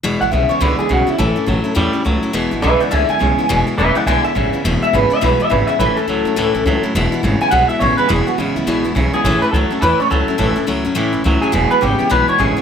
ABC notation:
X:1
M:4/4
L:1/8
Q:"Swing" 1/4=209
K:E
V:1 name="Clean electric guitar"
z f e c B G F E | A6 z2 | z2 [Be] [=df] [eg] g3- | g z [Be] [=df] [eg] e3 |
z e B e B e B e | B A6 z | z3 g f e c B | G F E4 z G- |
G B A2 B c A2- | A2 z4 z G- | G B =G2 B c ^G2 |]
V:2 name="Steel-string acoustic guitar"
[E,,B,,E,G,B,E] [E,G,B,E] [E,G,B,E] [E,G,B,E] [E,,B,,E,G,B,E] [E,G,B,E] [E,G,B,E] [E,G,B,E] | [A,,E,A,CE] [A,CE] [E,A,CE] [A,CE] [A,,E,A,CE] [A,CE] [E,A,CE] [A,CE] | [E,,B,,E,G,B,E] [E,G,B,E] [E,G,B,E] [E,G,B,E] [E,,B,,E,G,B,E] [E,G,B,E] [E,G,B,E] [E,G,B,E] | [E,,B,,E,G,B,E] [E,G,B,E] [E,G,B,E] [E,G,B,E] [E,,B,,E,G,B,E] [E,G,B,E] [E,G,B,E] [E,G,B,E] |
[E,,B,,E,G,B,E] [E,G,B,E] [E,G,B,E] [E,G,B,E] [E,,B,,E,G,B,E] [E,G,B,E] [E,G,B,E] [E,G,B,E] | [A,,E,A,CE] [A,CE] [E,A,CE] [A,CE] [A,,E,A,CE] [A,CE] [E,A,CE] [A,CE] | [E,,B,,E,G,B,E] [E,G,B,E] [E,G,B,E] [E,G,B,E] [E,,B,,E,G,B,E] [E,G,B,E] [E,G,B,E] [E,G,B,E] | [E,,B,,E,G,B,E] [E,G,B,E] [E,G,B,E] [E,G,B,E] [E,,B,,E,G,B,E] [E,G,B,E] [E,G,B,E] [E,G,B,E] |
[A,,E,A,CE] [A,CE] [E,A,CE] [A,CE] [A,,E,A,CE] [A,CE] [E,A,CE] [A,CE] | [A,,E,A,CE] [A,CE] [E,A,CE] [A,CE] [A,,E,A,CE] [A,CE] [E,A,CE] [A,CE] | [E,,B,,E,G,B,E] [E,G,B,E] [E,G,B,E] [E,G,B,E] [E,,B,,E,G,B,E] [E,G,B,E] [E,G,B,E] [E,G,B,E] |]
V:3 name="Clean electric guitar" clef=bass
[E,,B,,]2 [E,,C,]2 [E,,=D,]2 [E,,C,]2 | [A,,E,]2 [A,,F,]2 [A,,=G,]2 [A,,F,]2 | [E,,B,,]2 [E,,C,]2 [E,,=D,]2 [E,,C,]2 | [E,,B,,]2 [E,,C,]2 [E,,=D,]2 [E,,C,]2 |
[E,,B,,]2 [E,,C,]2 [E,,B,,]2 [E,,C,]2 | [A,,E,]2 [A,,F,]2 [A,,E,]2 [A,,F,]2 | [E,,B,,]2 [E,,C,]2 [E,,B,,]2 [E,,C,]2 | [E,,B,,]2 [E,,C,]2 [E,,B,,]2 [E,,C,]2 |
[A,,E,]2 [A,,F,]2 [A,,E,]2 [A,,F,]2 | [A,,E,]2 [A,,F,]2 [A,,E,]2 [A,,F,]2 | [E,,B,,]2 [E,,C,]2 [E,,B,,]2 [E,,C,]2 |]
V:4 name="Upright bass" clef=bass
E,,, G,,, B,,, z C,, z B,,, z | A,,, z A,,, z E,, z C,, z | E,,, G,,, B,,, z C,, z B,,, z | E,,, z E,,, z B,,, z A,,, z |
E,,, z G,,, z B,,, z G,,, z | A,,, z C,, F,, C,, A,,, C,, z | E,,, z G,,, z B,,, z A,,, z | E,,, z A,,, C,, A,,, E,,, B,,, z |
A,,, z C,, z E,, z C,, z | A,,, z C,, F,, C,, A,,, C,, z | E,,, z G,,, z B,,, z A,,, z |]